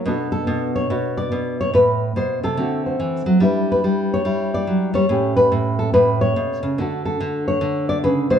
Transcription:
nylon-string guitar
0.06 B2 B3 D4 F#4 A4
0.32 A4
0.47 B2
0.76 C#5
0.90 B2 F#4
1.17 D5
1.32 B2
1.61 C#5
1.73 A2 B4
2.16 B2 C5
2.43 C3 A4
2.57 D3 A3 C4 F#4
2.86 C5
3.00 E3
3.26 F#3
3.40 G3 D4 E4 B4
3.72 B4
3.84 G3
4.14 C#5
4.25 G3 E4
4.54 D5
4.67 F#3
4.94 G3 C#5
5.09 A2 A3 C#4 G4
5.37 B4
5.52 A2
5.79 A4
5.94 A2 B4
6.21 C#5
6.36 B2
6.63 C#3
6.78 D3 A3 D4 F#4 A4
7.05 A4
7.20 D3
7.48 C#5
7.61 D3
7.89 D5
8.04 C#3 B4
8.30 B2 C5

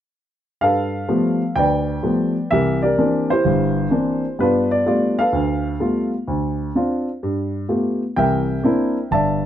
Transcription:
grand piano
0.61 G2 A4 B4 F5
1.08 F3 G3 A3 B3
1.56 D2 B4 D5 G5
2.03 F3 G3 A3 B3
2.51 C2 E3 G4 A#4 E5
2.82 G4 A#4 D5
2.98 E3 A#3 C4 D4
3.30 E4 G4 C5
3.45 G1
3.90 E3 A#3 C4 D4
4.39 G2 B3 D4 F4 B4
4.71 D5
4.86 G3 A3 B3 F4 D5
5.19 A4 B4 F5
5.32 D2
5.80 G3 A3 B3 F4
6.27 D2
6.75 C4 D4 F4
7.23 G2
7.69 A3 B3 F4 G4
8.16 C2 E3 A#4 E5 G5
8.63 A#3 C4 D4 E4
9.11 G1 D5 E5 A5

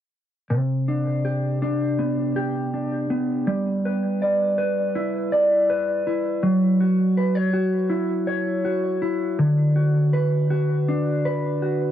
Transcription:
clean electric guitar
0.50 C3
0.88 D4
1.25 G4
1.62 D4
1.99 B3
2.36 G4
2.74 D4
3.10 B3
3.47 G3
3.85 B4
4.22 D5
4.58 B4
4.95 E4
5.32 D5
5.70 B4
6.07 E4
6.43 F#3
6.81 F#4
7.17 B4
7.35 C#5
7.54 F#4
7.90 E4
8.27 C#5
8.65 F#4
9.02 E4
9.39 D3
9.76 F#4
10.13 B4
10.50 F#4
10.89 D4
11.25 B4
11.62 F#4

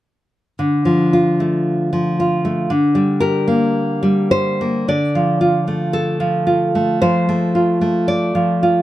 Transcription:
nylon-string guitar
0.59 D3
0.85 F3
1.13 F4
1.40 A3
1.93 F3
2.20 F4
2.45 A3
2.70 D3
2.95 G3
3.20 G4 A#4
3.48 A#3
4.03 G3
4.31 G4 C5
4.61 A#3
4.88 D3 D5
5.15 F3
5.41 F4
5.68 A3
5.93 A4
6.20 F3
6.47 F4
6.75 A3
7.02 F3 C5
7.29 A3
7.55 F4
7.81 A3
8.08 D5
8.35 F3
8.63 F4

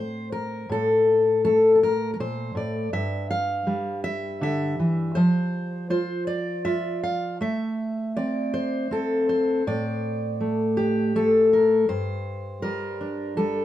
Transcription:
steel-string acoustic guitar
Already playing: A2 C4 C5
0.32 A#4
0.69 A2 A4
1.45 A3 A4
1.75 A4
1.83 A#4
2.14 A#4
2.20 A#2 C5
2.55 A2 D5
2.93 G2 E5
3.31 F5
3.67 G3
4.04 E5
4.41 D3 E5
4.79 E3
5.15 F3 C5
5.90 F4 C5
6.27 D5
6.65 F4 E5
7.03 F5
7.41 A3 E5
8.17 C4 D5
8.54 C5
8.91 C4 A4
9.29 C5
9.67 A2 D5
10.41 A3
10.77 G4
11.16 A3 A4
11.53 A#4
11.89 G2 C5
12.62 G3 A#4
13.01 D4
13.37 G3 A4

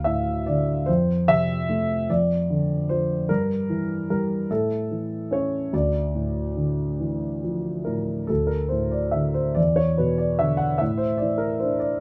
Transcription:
grand piano
Already playing: D2 F5
0.04 A2 E5
0.46 D3 D5
0.86 F2 C5
1.28 C3 E5
1.69 A3
2.10 F2 D5
2.50 D3
2.89 F3 C5
3.29 G2 A#4
3.70 E3
4.10 G3 A#4
4.50 A2 A4
4.91 E3
5.31 C#4 C#5
5.73 D2 D5
6.15 A2
6.57 D3
7.00 E3
7.44 F3
7.85 A2 A#4
8.27 D2 A4
8.47 A#4
8.69 A2 C5
8.91 D5
9.11 D3 E5
9.34 C5
9.55 E2 D5
9.76 C#5
9.98 B2 B4
10.18 D5
10.39 D3 E5
10.57 F#5
10.78 A2 E5
10.98 C5
11.18 D5
11.22 E3
11.38 A#4
11.60 D4 C5
11.80 D5

